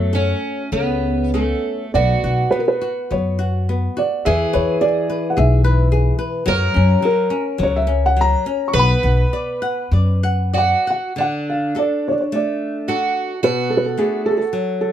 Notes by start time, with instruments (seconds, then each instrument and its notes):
Already playing: upright bass F#2, nylon-string guitar F#3, twelve-string acoustic guitar A3, felt piano F#4
0.13 nylon-string guitar C#4 F#4 A4, twelve-string acoustic guitar C#4
0.72 upright bass C#2, nylon-string guitar C#3, twelve-string acoustic guitar B3
1.34 twelve-string acoustic guitar A3, nylon-string guitar C#4 F#4 A4
1.94 upright bass B1, nylon-string guitar B3, twelve-string acoustic guitar F#4, felt piano D5
2.24 upright bass B1, nylon-string guitar F#4
2.51 nylon-string guitar B3, felt piano B4
2.59 felt piano A#4
2.68 felt piano B4
2.81 nylon-string guitar F#4
3.11 upright bass F#2, nylon-string guitar B3, felt piano C#5
3.39 nylon-string guitar F#4
3.69 nylon-string guitar B3
3.97 nylon-string guitar F#4, felt piano D5
4.25 upright bass E2, nylon-string guitar E3, twelve-string acoustic guitar G#4, felt piano E5
4.53 upright bass E2, nylon-string guitar B4, felt piano C#5
4.81 nylon-string guitar G#4, felt piano D5
5.10 nylon-string guitar B4
5.30 felt piano F#5
5.37 upright bass B1, nylon-string guitar G#4, felt piano E5
5.64 nylon-string guitar B4
5.92 nylon-string guitar G#4
6.19 nylon-string guitar B4
6.46 upright bass F#2, nylon-string guitar F#3, twelve-string acoustic guitar A#4, felt piano C#5
6.74 upright bass F#2, nylon-string guitar C#4
7.02 nylon-string guitar F#3, felt piano A#4
7.30 nylon-string guitar C#4
7.58 upright bass C#2, nylon-string guitar F#3
7.63 felt piano C#5
7.76 felt piano E5
7.87 nylon-string guitar C#4
8.06 felt piano F#5
8.16 nylon-string guitar F#3
8.21 felt piano A#5
8.46 nylon-string guitar C#4
8.68 felt piano C#6
8.73 upright bass B1, nylon-string guitar B3, twelve-string acoustic guitar B4
8.79 felt piano B5
9.03 upright bass B1, nylon-string guitar F#5
9.33 nylon-string guitar D5
9.62 nylon-string guitar F#5
9.91 upright bass F#2, nylon-string guitar D5
10.23 nylon-string guitar F#5
10.54 twelve-string acoustic guitar F#4, nylon-string guitar D5
10.58 felt piano F#5
10.87 nylon-string guitar F#5, felt piano F#5
11.16 nylon-string guitar D3, twelve-string acoustic guitar D4
11.21 felt piano F#5
11.50 felt piano F5
11.75 nylon-string guitar D4 F#4 A4, felt piano D5
12.08 felt piano C#5 D5
12.20 felt piano C#5
12.32 nylon-string guitar A3, felt piano D5
12.88 nylon-string guitar D4 F#4 A4, twelve-string acoustic guitar F#4
13.43 nylon-string guitar B2, twelve-string acoustic guitar F#4, felt piano B4
13.70 felt piano A4
13.77 felt piano B4
13.86 felt piano A4
13.98 nylon-string guitar A3 B3 D4, felt piano G#4
14.26 felt piano A4
14.30 felt piano G#4
14.38 felt piano A4
14.53 nylon-string guitar F#3
14.81 felt piano A4